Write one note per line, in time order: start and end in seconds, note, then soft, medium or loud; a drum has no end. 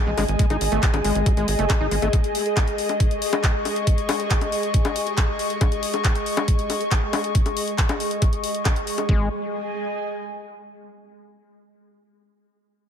0.00 9.13 G#3 medium
0.00 9.08 G#4 medium
0.00 9.09 D#5 medium
0.00 2.84 G#5 medium
0.07 0.14 A1 medium
0.07 0.11 G#3 loud
0.18 0.25 G#1 loud
0.18 0.24 G#3 loud
0.18 open hi-hat loud
0.18 high bongo medium
0.28 0.36 G#1 medium
0.28 closed hi-hat soft
0.39 0.46 G#3 loud
0.39 kick loud
0.39 closed hi-hat medium
0.50 0.58 G#1 medium
0.50 0.57 D#4 medium
0.50 closed hi-hat soft
0.50 high bongo soft
0.61 0.68 G#1 loud
0.61 open hi-hat loud
0.72 0.79 G#1 loud
0.72 0.82 A3 medium
0.72 closed hi-hat soft
0.83 kick loud
0.83 clap loud
0.83 closed hi-hat medium
0.94 1.01 G#1 medium
0.94 closed hi-hat soft
0.94 high bongo medium
1.04 1.12 G#1 loud
1.04 1.28 G#3 medium
1.04 open hi-hat loud
1.15 1.23 G#1 medium
1.15 closed hi-hat soft
1.26 1.33 F#3 medium
1.26 kick loud
1.26 closed hi-hat medium
1.26 high bongo soft
1.37 1.45 G#1 medium
1.37 1.47 G#3 medium
1.37 closed hi-hat soft
1.48 1.55 G#1 loud
1.48 open hi-hat loud
1.59 1.66 F#1 medium
1.59 1.65 A3 medium
1.59 closed hi-hat soft
1.70 1.74 A3 medium
1.70 kick loud
1.70 clap loud
1.70 closed hi-hat medium
1.70 high bongo medium
1.81 1.88 G#1 medium
1.81 1.87 D#4 medium
1.91 1.99 G#1 loud
1.91 1.95 G#3 medium
1.91 open hi-hat loud
2.02 2.10 G#1 medium
2.02 2.09 A3 medium
2.02 closed hi-hat soft
2.02 high bongo soft
2.13 kick loud
2.13 closed hi-hat medium
2.13 high bongo soft
2.24 closed hi-hat soft
2.35 open hi-hat loud
2.46 closed hi-hat soft
2.57 kick loud
2.57 clap loud
2.57 closed hi-hat medium
2.57 high bongo medium
2.68 closed hi-hat soft
2.78 9.11 C#6 medium
2.78 open hi-hat medium
2.89 closed hi-hat soft
2.89 high bongo soft
3.00 kick loud
3.00 closed hi-hat medium
3.11 closed hi-hat soft
3.22 open hi-hat loud
3.33 closed hi-hat soft
3.33 high bongo medium
3.44 kick loud
3.44 clap loud
3.44 closed hi-hat medium
3.65 open hi-hat medium
3.65 high bongo soft
3.76 closed hi-hat soft
3.87 kick loud
3.87 closed hi-hat medium
3.98 closed hi-hat soft
4.09 open hi-hat loud
4.09 high bongo medium
4.20 closed hi-hat soft
4.31 kick loud
4.31 clap loud
4.31 closed hi-hat medium
4.41 closed hi-hat soft
4.41 high bongo soft
4.52 open hi-hat medium
4.63 closed hi-hat soft
4.74 kick loud
4.74 closed hi-hat medium
4.85 closed hi-hat soft
4.85 high bongo medium
4.96 open hi-hat loud
5.07 closed hi-hat soft
5.18 kick loud
5.18 clap loud
5.18 closed hi-hat medium
5.18 high bongo soft
5.39 open hi-hat medium
5.50 closed hi-hat soft
5.61 kick loud
5.61 closed hi-hat loud
5.61 high bongo medium
5.72 closed hi-hat soft
5.83 open hi-hat loud
5.94 closed hi-hat soft
5.94 high bongo soft
6.04 kick loud
6.04 clap loud
6.04 closed hi-hat medium
6.15 closed hi-hat soft
6.26 open hi-hat medium
6.37 closed hi-hat soft
6.37 high bongo medium
6.48 kick loud
6.48 closed hi-hat loud
6.59 closed hi-hat soft
6.70 open hi-hat loud
6.70 high bongo soft
6.81 closed hi-hat soft
6.91 kick loud
6.91 clap loud
6.91 closed hi-hat loud
7.13 open hi-hat medium
7.13 high bongo medium
7.24 closed hi-hat soft
7.35 kick loud
7.35 closed hi-hat loud
7.46 closed hi-hat soft
7.46 high bongo soft
7.57 open hi-hat loud
7.68 closed hi-hat soft
7.78 kick loud
7.78 clap loud
7.78 closed hi-hat loud
7.89 closed hi-hat soft
7.89 high bongo medium
8.00 open hi-hat medium
8.11 closed hi-hat soft
8.22 kick loud
8.22 closed hi-hat loud
8.22 high bongo soft
8.33 closed hi-hat soft
8.44 open hi-hat loud
8.54 closed hi-hat soft
8.65 kick loud
8.65 clap loud
8.65 closed hi-hat medium
8.65 high bongo medium
8.76 closed hi-hat soft
8.87 open hi-hat medium
8.98 closed hi-hat soft
8.98 high bongo soft
9.09 9.29 G#1 loud
9.09 9.29 G#3 medium
9.09 10.79 G#4 medium
9.09 kick loud
9.15 10.79 D#5 medium
9.22 10.79 G#5 medium